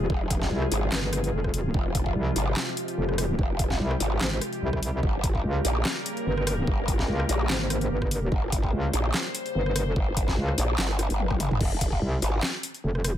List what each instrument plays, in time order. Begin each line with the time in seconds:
Already playing: ambient pad C3 F3 G#3 F4 G#4
0.10 wobble bass F1, kick
0.30 kick, closed hi-hat
0.42 kick, snare
0.51 wobble bass C2
0.62 cross-stick
0.72 wobble bass G#1, closed hi-hat
0.92 wobble bass G1, snare, clap
1.13 cross-stick, closed hi-hat
1.24 closed hi-hat
1.33 wobble bass F1
1.44 kick, cross-stick
1.54 open hi-hat
1.74 wobble bass F1, ambient pad G4, kick
1.95 kick, closed hi-hat
2.06 kick
2.15 wobble bass C2
2.36 wobble bass G#1, closed hi-hat
2.57 snare, clap
2.77 closed hi-hat
2.88 closed hi-hat
2.98 wobble bass F1
3.09 cross-stick
3.18 cross-stick, open hi-hat
3.39 wobble bass F1, kick
3.59 kick, closed hi-hat
3.70 kick, snare
3.80 wobble bass C2
3.91 cross-stick
4.00 wobble bass G#1, closed hi-hat
4.21 wobble bass G#1, snare, clap
4.41 cross-stick, closed hi-hat
4.53 closed hi-hat
4.62 wobble bass C2
4.73 kick, cross-stick
4.83 open hi-hat
5.03 wobble bass G1, ambient pad C#3 G3 A#3 A#4, kick
5.24 kick, closed hi-hat
5.35 kick
5.44 wobble bass C#2
5.65 wobble bass A#1, closed hi-hat
5.85 snare, clap
6.06 closed hi-hat
6.17 closed hi-hat
6.26 wobble bass G1
6.38 cross-stick
6.47 cross-stick, open hi-hat
6.67 wobble bass G1, kick
6.88 kick, closed hi-hat
6.99 kick, snare
7.09 wobble bass C#2
7.20 cross-stick
7.29 wobble bass A#1, closed hi-hat
7.50 wobble bass G#1, snare, clap
7.70 cross-stick, closed hi-hat
7.81 closed hi-hat
7.91 wobble bass G1
8.02 kick, cross-stick
8.11 open hi-hat
8.32 wobble bass G1, ambient pad C5, kick
8.52 kick, closed hi-hat
8.64 kick
8.73 wobble bass C#2
8.93 wobble bass A#1, closed hi-hat
9.14 snare, clap
9.35 closed hi-hat
9.46 closed hi-hat
9.55 wobble bass G1
9.66 cross-stick
9.76 cross-stick, open hi-hat
9.96 wobble bass G1, kick
10.17 kick, closed hi-hat
10.28 kick, snare
10.37 wobble bass C#2
10.48 cross-stick
10.58 wobble bass A#1, closed hi-hat
10.78 wobble bass G1, snare, clap
10.99 cross-stick, closed hi-hat
11.10 wobble bass G1, closed hi-hat
11.20 high tom
11.31 kick, cross-stick, high tom
11.40 open hi-hat, mid tom
11.51 wobble bass G1, mid tom
11.61 wobble bass F1, kick, crash
11.81 kick, closed hi-hat
11.92 kick
12.02 wobble bass C2
12.22 wobble bass G#1, closed hi-hat
12.43 snare, clap
12.63 closed hi-hat
12.74 closed hi-hat
12.84 wobble bass F1
12.95 cross-stick
13.04 cross-stick, open hi-hat